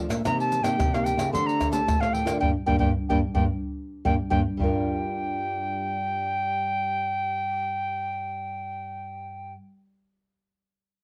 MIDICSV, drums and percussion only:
0, 0, Header, 1, 4, 480
1, 0, Start_track
1, 0, Key_signature, -2, "minor"
1, 0, Tempo, 544465
1, 218, Time_signature, 4, 2, 24, 8
1, 9724, End_track
2, 0, Start_track
2, 0, Title_t, "Pandeiro"
2, 91, Note_on_c, 9, 54, 72
2, 179, Note_off_c, 9, 54, 0
2, 223, Note_on_c, 9, 54, 78
2, 311, Note_off_c, 9, 54, 0
2, 355, Note_on_c, 9, 54, 32
2, 443, Note_off_c, 9, 54, 0
2, 458, Note_on_c, 9, 54, 58
2, 546, Note_off_c, 9, 54, 0
2, 567, Note_on_c, 9, 54, 68
2, 655, Note_off_c, 9, 54, 0
2, 703, Note_on_c, 9, 54, 79
2, 791, Note_off_c, 9, 54, 0
2, 833, Note_on_c, 9, 54, 34
2, 921, Note_off_c, 9, 54, 0
2, 936, Note_on_c, 9, 54, 58
2, 1024, Note_off_c, 9, 54, 0
2, 1048, Note_on_c, 9, 54, 70
2, 1136, Note_off_c, 9, 54, 0
2, 1187, Note_on_c, 9, 54, 75
2, 1275, Note_off_c, 9, 54, 0
2, 1313, Note_on_c, 9, 54, 32
2, 1401, Note_off_c, 9, 54, 0
2, 1416, Note_on_c, 9, 54, 61
2, 1504, Note_off_c, 9, 54, 0
2, 1523, Note_on_c, 9, 54, 68
2, 1611, Note_off_c, 9, 54, 0
2, 1661, Note_on_c, 9, 54, 79
2, 1749, Note_off_c, 9, 54, 0
2, 1788, Note_on_c, 9, 54, 32
2, 1876, Note_off_c, 9, 54, 0
2, 1892, Note_on_c, 9, 54, 56
2, 1980, Note_off_c, 9, 54, 0
2, 2001, Note_on_c, 9, 54, 70
2, 2090, Note_off_c, 9, 54, 0
2, 9724, End_track
3, 0, Start_track
3, 0, Title_t, "Tamborim"
3, 91, Note_on_c, 9, 60, 88
3, 179, Note_off_c, 9, 60, 0
3, 223, Note_on_c, 9, 60, 86
3, 311, Note_off_c, 9, 60, 0
3, 567, Note_on_c, 9, 60, 81
3, 655, Note_off_c, 9, 60, 0
3, 703, Note_on_c, 9, 60, 80
3, 791, Note_off_c, 9, 60, 0
3, 833, Note_on_c, 9, 60, 80
3, 921, Note_off_c, 9, 60, 0
3, 1048, Note_on_c, 9, 60, 83
3, 1136, Note_off_c, 9, 60, 0
3, 1416, Note_on_c, 9, 60, 85
3, 1504, Note_off_c, 9, 60, 0
3, 1661, Note_on_c, 9, 60, 84
3, 1749, Note_off_c, 9, 60, 0
3, 1788, Note_on_c, 9, 60, 77
3, 1876, Note_off_c, 9, 60, 0
3, 2001, Note_on_c, 9, 60, 84
3, 2090, Note_off_c, 9, 60, 0
3, 9724, End_track
4, 0, Start_track
4, 0, Title_t, "Drums"
4, 91, Note_on_c, 9, 82, 82
4, 179, Note_off_c, 9, 82, 0
4, 223, Note_on_c, 9, 82, 81
4, 223, Note_on_c, 9, 87, 60
4, 311, Note_off_c, 9, 82, 0
4, 311, Note_off_c, 9, 87, 0
4, 355, Note_on_c, 9, 82, 31
4, 443, Note_off_c, 9, 82, 0
4, 458, Note_on_c, 9, 82, 73
4, 546, Note_off_c, 9, 82, 0
4, 567, Note_on_c, 9, 82, 80
4, 655, Note_off_c, 9, 82, 0
4, 703, Note_on_c, 9, 82, 76
4, 703, Note_on_c, 9, 87, 101
4, 791, Note_off_c, 9, 82, 0
4, 791, Note_off_c, 9, 87, 0
4, 833, Note_on_c, 9, 82, 33
4, 921, Note_off_c, 9, 82, 0
4, 936, Note_on_c, 9, 82, 74
4, 1024, Note_off_c, 9, 82, 0
4, 1048, Note_on_c, 9, 82, 77
4, 1136, Note_off_c, 9, 82, 0
4, 1187, Note_on_c, 9, 82, 78
4, 1187, Note_on_c, 9, 87, 54
4, 1275, Note_off_c, 9, 82, 0
4, 1275, Note_off_c, 9, 87, 0
4, 1313, Note_on_c, 9, 82, 32
4, 1401, Note_off_c, 9, 82, 0
4, 1416, Note_on_c, 9, 82, 75
4, 1416, Note_on_c, 9, 87, 70
4, 1504, Note_off_c, 9, 82, 0
4, 1504, Note_off_c, 9, 87, 0
4, 1523, Note_on_c, 9, 82, 90
4, 1611, Note_off_c, 9, 82, 0
4, 1661, Note_on_c, 9, 82, 77
4, 1661, Note_on_c, 9, 87, 102
4, 1749, Note_off_c, 9, 82, 0
4, 1749, Note_off_c, 9, 87, 0
4, 1788, Note_on_c, 9, 82, 34
4, 1876, Note_off_c, 9, 82, 0
4, 2001, Note_on_c, 9, 82, 87
4, 2090, Note_off_c, 9, 82, 0
4, 2137, Note_on_c, 9, 87, 95
4, 2225, Note_off_c, 9, 87, 0
4, 2367, Note_on_c, 9, 87, 102
4, 2455, Note_off_c, 9, 87, 0
4, 2479, Note_on_c, 9, 87, 99
4, 2567, Note_off_c, 9, 87, 0
4, 2744, Note_on_c, 9, 87, 96
4, 2832, Note_off_c, 9, 87, 0
4, 2955, Note_on_c, 9, 87, 101
4, 3043, Note_off_c, 9, 87, 0
4, 3575, Note_on_c, 9, 87, 89
4, 3663, Note_off_c, 9, 87, 0
4, 3804, Note_on_c, 9, 87, 97
4, 3892, Note_off_c, 9, 87, 0
4, 4055, Note_on_c, 9, 87, 96
4, 4143, Note_off_c, 9, 87, 0
4, 9724, End_track
0, 0, End_of_file